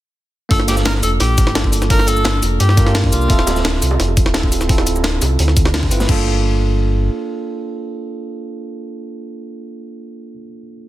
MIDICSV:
0, 0, Header, 1, 5, 480
1, 0, Start_track
1, 0, Tempo, 348837
1, 698, Time_signature, 4, 2, 24, 8
1, 14978, End_track
2, 0, Start_track
2, 0, Title_t, "Tenor saxophone"
2, 0, Program_c, 0, 66
2, 699, Note_on_c, 0, 69, 108
2, 806, Note_off_c, 0, 69, 0
2, 937, Note_on_c, 0, 67, 93
2, 1045, Note_off_c, 0, 67, 0
2, 1179, Note_on_c, 0, 70, 114
2, 1286, Note_off_c, 0, 70, 0
2, 1416, Note_on_c, 0, 69, 94
2, 1525, Note_off_c, 0, 69, 0
2, 1658, Note_on_c, 0, 67, 104
2, 2327, Note_off_c, 0, 67, 0
2, 2619, Note_on_c, 0, 70, 114
2, 2858, Note_on_c, 0, 69, 109
2, 2878, Note_off_c, 0, 70, 0
2, 3337, Note_off_c, 0, 69, 0
2, 3576, Note_on_c, 0, 67, 102
2, 4023, Note_off_c, 0, 67, 0
2, 4297, Note_on_c, 0, 65, 96
2, 5202, Note_off_c, 0, 65, 0
2, 14978, End_track
3, 0, Start_track
3, 0, Title_t, "Tine electric piano"
3, 0, Program_c, 1, 4
3, 674, Note_on_c, 1, 58, 97
3, 689, Note_on_c, 1, 62, 92
3, 703, Note_on_c, 1, 65, 88
3, 717, Note_on_c, 1, 69, 109
3, 936, Control_c, 1, 64, 127
3, 2098, Note_off_c, 1, 58, 0
3, 2105, Note_off_c, 1, 62, 0
3, 2112, Note_off_c, 1, 65, 0
3, 2119, Note_off_c, 1, 69, 0
3, 2126, Note_on_c, 1, 58, 79
3, 2133, Note_on_c, 1, 62, 74
3, 2140, Note_on_c, 1, 65, 72
3, 2147, Note_on_c, 1, 69, 86
3, 2581, Note_off_c, 1, 58, 0
3, 2587, Note_off_c, 1, 62, 0
3, 2591, Note_off_c, 1, 65, 0
3, 2594, Note_off_c, 1, 69, 0
3, 2597, Note_on_c, 1, 58, 73
3, 2611, Note_on_c, 1, 62, 68
3, 2624, Note_on_c, 1, 65, 67
3, 2637, Note_on_c, 1, 69, 81
3, 3779, Note_off_c, 1, 58, 0
3, 3786, Note_off_c, 1, 62, 0
3, 3793, Note_off_c, 1, 65, 0
3, 3799, Note_off_c, 1, 69, 0
3, 3806, Note_on_c, 1, 58, 93
3, 3812, Note_on_c, 1, 62, 85
3, 3819, Note_on_c, 1, 65, 85
3, 3827, Note_on_c, 1, 70, 102
3, 3905, Note_off_c, 1, 58, 0
3, 3908, Note_off_c, 1, 62, 0
3, 3911, Note_off_c, 1, 65, 0
3, 3915, Note_off_c, 1, 70, 0
3, 3920, Note_on_c, 1, 58, 94
3, 3934, Note_on_c, 1, 62, 83
3, 3948, Note_on_c, 1, 65, 84
3, 3962, Note_on_c, 1, 67, 101
3, 4499, Note_off_c, 1, 58, 0
3, 4506, Note_off_c, 1, 62, 0
3, 4513, Note_off_c, 1, 65, 0
3, 4517, Note_on_c, 1, 60, 101
3, 4520, Note_off_c, 1, 67, 0
3, 4531, Note_on_c, 1, 76, 92
3, 4544, Note_on_c, 1, 65, 93
3, 4558, Control_c, 1, 64, 0
3, 4558, Note_on_c, 1, 69, 109
3, 4767, Control_c, 1, 64, 127
3, 5939, Note_off_c, 1, 60, 0
3, 5946, Note_off_c, 1, 76, 0
3, 5953, Note_off_c, 1, 65, 0
3, 5960, Note_off_c, 1, 69, 0
3, 5967, Note_on_c, 1, 60, 80
3, 5973, Note_on_c, 1, 64, 73
3, 5980, Note_on_c, 1, 65, 75
3, 5988, Note_on_c, 1, 69, 88
3, 6418, Note_off_c, 1, 60, 0
3, 6427, Note_off_c, 1, 64, 0
3, 6431, Note_off_c, 1, 65, 0
3, 6434, Note_off_c, 1, 69, 0
3, 6434, Note_on_c, 1, 60, 74
3, 6448, Note_on_c, 1, 64, 68
3, 6463, Note_on_c, 1, 65, 70
3, 6476, Note_on_c, 1, 69, 83
3, 7618, Note_off_c, 1, 60, 0
3, 7625, Note_off_c, 1, 64, 0
3, 7632, Note_off_c, 1, 65, 0
3, 7639, Note_off_c, 1, 69, 0
3, 8126, Note_on_c, 1, 60, 93
3, 8132, Note_on_c, 1, 64, 85
3, 8140, Note_on_c, 1, 65, 84
3, 8146, Note_on_c, 1, 71, 104
3, 8343, Note_off_c, 1, 60, 0
3, 8347, Note_off_c, 1, 64, 0
3, 8347, Note_on_c, 1, 58, 89
3, 8351, Note_off_c, 1, 65, 0
3, 8353, Note_off_c, 1, 71, 0
3, 8366, Note_on_c, 1, 62, 82
3, 8387, Note_on_c, 1, 65, 80
3, 8397, Control_c, 1, 64, 0
3, 8408, Note_on_c, 1, 69, 95
3, 8651, Control_c, 1, 64, 127
3, 14211, Note_off_c, 1, 58, 0
3, 14221, Note_off_c, 1, 62, 0
3, 14231, Note_off_c, 1, 65, 0
3, 14241, Note_off_c, 1, 69, 0
3, 14978, End_track
4, 0, Start_track
4, 0, Title_t, "Sub bass"
4, 0, Program_c, 2, 38
4, 698, Note_on_c, 2, 31, 100
4, 1399, Note_off_c, 2, 31, 0
4, 1415, Note_on_c, 2, 29, 82
4, 1633, Note_off_c, 2, 29, 0
4, 1656, Note_on_c, 2, 34, 91
4, 2017, Note_on_c, 2, 31, 89
4, 2037, Note_off_c, 2, 34, 0
4, 3317, Note_off_c, 2, 31, 0
4, 3337, Note_on_c, 2, 29, 78
4, 3554, Note_off_c, 2, 29, 0
4, 3575, Note_on_c, 2, 43, 92
4, 4278, Note_off_c, 2, 43, 0
4, 4295, Note_on_c, 2, 36, 82
4, 4513, Note_off_c, 2, 36, 0
4, 4538, Note_on_c, 2, 26, 107
4, 5239, Note_off_c, 2, 26, 0
4, 5257, Note_on_c, 2, 36, 81
4, 5474, Note_off_c, 2, 36, 0
4, 5499, Note_on_c, 2, 29, 91
4, 5861, Note_on_c, 2, 26, 86
4, 5882, Note_off_c, 2, 29, 0
4, 7159, Note_off_c, 2, 26, 0
4, 7179, Note_on_c, 2, 36, 77
4, 7395, Note_off_c, 2, 36, 0
4, 7419, Note_on_c, 2, 38, 96
4, 8119, Note_off_c, 2, 38, 0
4, 8138, Note_on_c, 2, 31, 87
4, 8354, Note_off_c, 2, 31, 0
4, 8378, Note_on_c, 2, 31, 103
4, 9763, Note_off_c, 2, 31, 0
4, 14978, End_track
5, 0, Start_track
5, 0, Title_t, "Drums"
5, 698, Note_on_c, 9, 36, 120
5, 698, Note_on_c, 9, 42, 84
5, 703, Note_off_c, 9, 42, 0
5, 703, Note_on_c, 9, 42, 91
5, 820, Note_on_c, 9, 40, 46
5, 836, Note_off_c, 9, 36, 0
5, 841, Note_off_c, 9, 42, 0
5, 933, Note_on_c, 9, 38, 54
5, 933, Note_on_c, 9, 42, 70
5, 938, Note_off_c, 9, 42, 0
5, 938, Note_on_c, 9, 42, 98
5, 938, Note_on_c, 9, 69, 62
5, 957, Note_off_c, 9, 40, 0
5, 1057, Note_off_c, 9, 38, 0
5, 1057, Note_on_c, 9, 38, 46
5, 1061, Note_off_c, 9, 69, 0
5, 1061, Note_on_c, 9, 69, 28
5, 1075, Note_off_c, 9, 42, 0
5, 1172, Note_on_c, 9, 42, 90
5, 1177, Note_off_c, 9, 38, 0
5, 1177, Note_off_c, 9, 42, 0
5, 1177, Note_on_c, 9, 38, 122
5, 1177, Note_on_c, 9, 42, 84
5, 1180, Note_off_c, 9, 38, 0
5, 1180, Note_on_c, 9, 38, 127
5, 1198, Note_off_c, 9, 69, 0
5, 1301, Note_off_c, 9, 38, 0
5, 1301, Note_on_c, 9, 38, 50
5, 1315, Note_off_c, 9, 42, 0
5, 1413, Note_on_c, 9, 42, 67
5, 1418, Note_on_c, 9, 46, 77
5, 1418, Note_on_c, 9, 69, 59
5, 1438, Note_off_c, 9, 38, 0
5, 1551, Note_off_c, 9, 42, 0
5, 1555, Note_off_c, 9, 46, 0
5, 1555, Note_off_c, 9, 69, 0
5, 1649, Note_on_c, 9, 42, 96
5, 1657, Note_off_c, 9, 42, 0
5, 1657, Note_on_c, 9, 40, 36
5, 1657, Note_on_c, 9, 42, 87
5, 1795, Note_off_c, 9, 40, 0
5, 1795, Note_off_c, 9, 42, 0
5, 1897, Note_on_c, 9, 42, 69
5, 1897, Note_on_c, 9, 69, 58
5, 1898, Note_on_c, 9, 36, 111
5, 2021, Note_on_c, 9, 40, 51
5, 2034, Note_off_c, 9, 69, 0
5, 2035, Note_off_c, 9, 36, 0
5, 2035, Note_off_c, 9, 42, 0
5, 2136, Note_on_c, 9, 38, 123
5, 2138, Note_off_c, 9, 38, 0
5, 2138, Note_on_c, 9, 38, 120
5, 2138, Note_on_c, 9, 42, 82
5, 2158, Note_off_c, 9, 40, 0
5, 2259, Note_off_c, 9, 38, 0
5, 2259, Note_on_c, 9, 38, 34
5, 2260, Note_on_c, 9, 36, 60
5, 2276, Note_off_c, 9, 42, 0
5, 2367, Note_on_c, 9, 42, 64
5, 2379, Note_on_c, 9, 46, 70
5, 2379, Note_on_c, 9, 69, 59
5, 2397, Note_off_c, 9, 38, 0
5, 2398, Note_off_c, 9, 36, 0
5, 2502, Note_off_c, 9, 69, 0
5, 2502, Note_on_c, 9, 40, 34
5, 2502, Note_on_c, 9, 69, 29
5, 2504, Note_off_c, 9, 42, 0
5, 2517, Note_off_c, 9, 46, 0
5, 2614, Note_on_c, 9, 42, 91
5, 2618, Note_on_c, 9, 36, 120
5, 2619, Note_off_c, 9, 42, 0
5, 2619, Note_on_c, 9, 42, 79
5, 2639, Note_off_c, 9, 40, 0
5, 2639, Note_off_c, 9, 69, 0
5, 2742, Note_on_c, 9, 40, 50
5, 2755, Note_off_c, 9, 36, 0
5, 2757, Note_off_c, 9, 42, 0
5, 2844, Note_on_c, 9, 42, 72
5, 2859, Note_off_c, 9, 42, 0
5, 2859, Note_on_c, 9, 42, 95
5, 2859, Note_on_c, 9, 69, 58
5, 2880, Note_off_c, 9, 40, 0
5, 2981, Note_off_c, 9, 69, 0
5, 2981, Note_on_c, 9, 69, 27
5, 2996, Note_off_c, 9, 42, 0
5, 3090, Note_on_c, 9, 42, 93
5, 3092, Note_on_c, 9, 38, 125
5, 3098, Note_off_c, 9, 38, 0
5, 3098, Note_off_c, 9, 42, 0
5, 3098, Note_on_c, 9, 38, 127
5, 3098, Note_on_c, 9, 42, 83
5, 3118, Note_off_c, 9, 69, 0
5, 3236, Note_off_c, 9, 38, 0
5, 3236, Note_off_c, 9, 42, 0
5, 3337, Note_on_c, 9, 42, 65
5, 3338, Note_on_c, 9, 46, 75
5, 3338, Note_on_c, 9, 69, 58
5, 3474, Note_off_c, 9, 42, 0
5, 3476, Note_off_c, 9, 46, 0
5, 3476, Note_off_c, 9, 69, 0
5, 3579, Note_on_c, 9, 42, 85
5, 3580, Note_off_c, 9, 42, 0
5, 3580, Note_on_c, 9, 42, 85
5, 3701, Note_on_c, 9, 40, 37
5, 3717, Note_off_c, 9, 42, 0
5, 3818, Note_on_c, 9, 36, 119
5, 3818, Note_on_c, 9, 42, 91
5, 3818, Note_on_c, 9, 69, 55
5, 3823, Note_off_c, 9, 42, 0
5, 3823, Note_on_c, 9, 42, 75
5, 3839, Note_off_c, 9, 40, 0
5, 3942, Note_on_c, 9, 40, 53
5, 3949, Note_off_c, 9, 42, 0
5, 3949, Note_on_c, 9, 42, 45
5, 3955, Note_off_c, 9, 36, 0
5, 3956, Note_off_c, 9, 69, 0
5, 4054, Note_on_c, 9, 38, 109
5, 4058, Note_off_c, 9, 38, 0
5, 4058, Note_off_c, 9, 42, 0
5, 4058, Note_on_c, 9, 38, 126
5, 4058, Note_on_c, 9, 42, 83
5, 4060, Note_on_c, 9, 46, 76
5, 4080, Note_off_c, 9, 40, 0
5, 4181, Note_on_c, 9, 36, 61
5, 4196, Note_off_c, 9, 38, 0
5, 4196, Note_off_c, 9, 42, 0
5, 4198, Note_off_c, 9, 46, 0
5, 4299, Note_on_c, 9, 46, 75
5, 4299, Note_on_c, 9, 69, 55
5, 4301, Note_on_c, 9, 42, 64
5, 4318, Note_off_c, 9, 36, 0
5, 4422, Note_off_c, 9, 69, 0
5, 4422, Note_on_c, 9, 69, 27
5, 4437, Note_off_c, 9, 46, 0
5, 4439, Note_off_c, 9, 42, 0
5, 4536, Note_on_c, 9, 42, 89
5, 4538, Note_off_c, 9, 42, 0
5, 4538, Note_on_c, 9, 36, 123
5, 4538, Note_on_c, 9, 42, 77
5, 4559, Note_off_c, 9, 69, 0
5, 4662, Note_on_c, 9, 40, 47
5, 4676, Note_off_c, 9, 36, 0
5, 4676, Note_off_c, 9, 42, 0
5, 4771, Note_on_c, 9, 60, 90
5, 4779, Note_on_c, 9, 42, 89
5, 4779, Note_on_c, 9, 69, 60
5, 4781, Note_on_c, 9, 38, 55
5, 4782, Note_off_c, 9, 42, 0
5, 4782, Note_on_c, 9, 42, 63
5, 4800, Note_off_c, 9, 40, 0
5, 4902, Note_off_c, 9, 38, 0
5, 4902, Note_on_c, 9, 38, 45
5, 4903, Note_off_c, 9, 69, 0
5, 4903, Note_on_c, 9, 69, 26
5, 4909, Note_off_c, 9, 60, 0
5, 4920, Note_off_c, 9, 42, 0
5, 5020, Note_off_c, 9, 38, 0
5, 5020, Note_on_c, 9, 38, 127
5, 5020, Note_on_c, 9, 42, 83
5, 5020, Note_on_c, 9, 60, 52
5, 5041, Note_off_c, 9, 69, 0
5, 5137, Note_off_c, 9, 38, 0
5, 5137, Note_on_c, 9, 38, 49
5, 5157, Note_off_c, 9, 60, 0
5, 5158, Note_off_c, 9, 42, 0
5, 5259, Note_on_c, 9, 46, 81
5, 5259, Note_on_c, 9, 69, 58
5, 5275, Note_off_c, 9, 38, 0
5, 5275, Note_on_c, 9, 42, 70
5, 5377, Note_on_c, 9, 60, 85
5, 5396, Note_off_c, 9, 46, 0
5, 5396, Note_off_c, 9, 69, 0
5, 5412, Note_off_c, 9, 42, 0
5, 5500, Note_on_c, 9, 40, 37
5, 5500, Note_on_c, 9, 42, 76
5, 5503, Note_off_c, 9, 42, 0
5, 5503, Note_on_c, 9, 42, 91
5, 5514, Note_off_c, 9, 60, 0
5, 5614, Note_on_c, 9, 60, 52
5, 5637, Note_off_c, 9, 40, 0
5, 5641, Note_off_c, 9, 42, 0
5, 5738, Note_on_c, 9, 36, 121
5, 5739, Note_on_c, 9, 42, 91
5, 5739, Note_on_c, 9, 69, 56
5, 5751, Note_off_c, 9, 60, 0
5, 5861, Note_on_c, 9, 40, 50
5, 5876, Note_off_c, 9, 36, 0
5, 5876, Note_off_c, 9, 42, 0
5, 5876, Note_off_c, 9, 69, 0
5, 5971, Note_on_c, 9, 38, 115
5, 5977, Note_off_c, 9, 38, 0
5, 5977, Note_on_c, 9, 38, 127
5, 5977, Note_on_c, 9, 42, 80
5, 5979, Note_on_c, 9, 60, 81
5, 5999, Note_off_c, 9, 40, 0
5, 6101, Note_off_c, 9, 38, 0
5, 6101, Note_on_c, 9, 36, 63
5, 6101, Note_on_c, 9, 38, 39
5, 6115, Note_off_c, 9, 42, 0
5, 6117, Note_off_c, 9, 60, 0
5, 6213, Note_on_c, 9, 60, 51
5, 6219, Note_on_c, 9, 46, 74
5, 6219, Note_on_c, 9, 69, 55
5, 6225, Note_on_c, 9, 42, 67
5, 6239, Note_off_c, 9, 36, 0
5, 6239, Note_off_c, 9, 38, 0
5, 6341, Note_off_c, 9, 69, 0
5, 6341, Note_on_c, 9, 40, 35
5, 6341, Note_on_c, 9, 69, 28
5, 6350, Note_off_c, 9, 60, 0
5, 6357, Note_off_c, 9, 46, 0
5, 6363, Note_off_c, 9, 42, 0
5, 6459, Note_on_c, 9, 36, 121
5, 6459, Note_on_c, 9, 42, 73
5, 6460, Note_off_c, 9, 42, 0
5, 6460, Note_on_c, 9, 42, 95
5, 6478, Note_off_c, 9, 40, 0
5, 6478, Note_off_c, 9, 69, 0
5, 6580, Note_on_c, 9, 40, 46
5, 6581, Note_on_c, 9, 60, 80
5, 6596, Note_off_c, 9, 36, 0
5, 6598, Note_off_c, 9, 42, 0
5, 6689, Note_on_c, 9, 42, 61
5, 6698, Note_off_c, 9, 42, 0
5, 6698, Note_on_c, 9, 42, 93
5, 6698, Note_on_c, 9, 69, 60
5, 6718, Note_off_c, 9, 40, 0
5, 6718, Note_off_c, 9, 60, 0
5, 6821, Note_off_c, 9, 69, 0
5, 6821, Note_on_c, 9, 69, 26
5, 6823, Note_on_c, 9, 60, 54
5, 6835, Note_off_c, 9, 42, 0
5, 6932, Note_on_c, 9, 38, 110
5, 6936, Note_off_c, 9, 38, 0
5, 6936, Note_on_c, 9, 38, 127
5, 6936, Note_on_c, 9, 42, 78
5, 6937, Note_off_c, 9, 42, 0
5, 6937, Note_on_c, 9, 42, 96
5, 6958, Note_off_c, 9, 69, 0
5, 6961, Note_off_c, 9, 60, 0
5, 7074, Note_off_c, 9, 38, 0
5, 7075, Note_off_c, 9, 42, 0
5, 7177, Note_on_c, 9, 46, 81
5, 7177, Note_on_c, 9, 60, 77
5, 7177, Note_on_c, 9, 69, 56
5, 7181, Note_on_c, 9, 42, 71
5, 7315, Note_off_c, 9, 46, 0
5, 7315, Note_off_c, 9, 60, 0
5, 7315, Note_off_c, 9, 69, 0
5, 7319, Note_off_c, 9, 42, 0
5, 7417, Note_on_c, 9, 42, 75
5, 7417, Note_on_c, 9, 60, 54
5, 7427, Note_off_c, 9, 42, 0
5, 7427, Note_on_c, 9, 42, 87
5, 7540, Note_on_c, 9, 40, 34
5, 7554, Note_off_c, 9, 60, 0
5, 7565, Note_off_c, 9, 42, 0
5, 7659, Note_on_c, 9, 36, 114
5, 7659, Note_on_c, 9, 42, 88
5, 7659, Note_on_c, 9, 69, 56
5, 7661, Note_off_c, 9, 42, 0
5, 7661, Note_on_c, 9, 42, 69
5, 7678, Note_off_c, 9, 40, 0
5, 7775, Note_on_c, 9, 60, 78
5, 7776, Note_off_c, 9, 42, 0
5, 7776, Note_on_c, 9, 42, 43
5, 7781, Note_on_c, 9, 40, 48
5, 7796, Note_off_c, 9, 36, 0
5, 7797, Note_off_c, 9, 69, 0
5, 7895, Note_on_c, 9, 38, 117
5, 7898, Note_off_c, 9, 38, 0
5, 7898, Note_off_c, 9, 42, 0
5, 7898, Note_on_c, 9, 38, 127
5, 7898, Note_on_c, 9, 42, 81
5, 7906, Note_on_c, 9, 46, 79
5, 7913, Note_off_c, 9, 60, 0
5, 7919, Note_off_c, 9, 40, 0
5, 8012, Note_on_c, 9, 60, 61
5, 8021, Note_on_c, 9, 36, 66
5, 8036, Note_off_c, 9, 38, 0
5, 8036, Note_off_c, 9, 42, 0
5, 8043, Note_off_c, 9, 46, 0
5, 8128, Note_on_c, 9, 42, 61
5, 8138, Note_on_c, 9, 46, 81
5, 8138, Note_on_c, 9, 69, 56
5, 8150, Note_off_c, 9, 60, 0
5, 8159, Note_off_c, 9, 36, 0
5, 8259, Note_on_c, 9, 38, 100
5, 8261, Note_off_c, 9, 69, 0
5, 8261, Note_on_c, 9, 69, 27
5, 8266, Note_off_c, 9, 42, 0
5, 8269, Note_off_c, 9, 46, 0
5, 8269, Note_on_c, 9, 46, 72
5, 8377, Note_on_c, 9, 49, 87
5, 8378, Note_on_c, 9, 36, 112
5, 8397, Note_off_c, 9, 38, 0
5, 8398, Note_off_c, 9, 69, 0
5, 8406, Note_off_c, 9, 46, 0
5, 8515, Note_off_c, 9, 49, 0
5, 8516, Note_off_c, 9, 36, 0
5, 14978, End_track
0, 0, End_of_file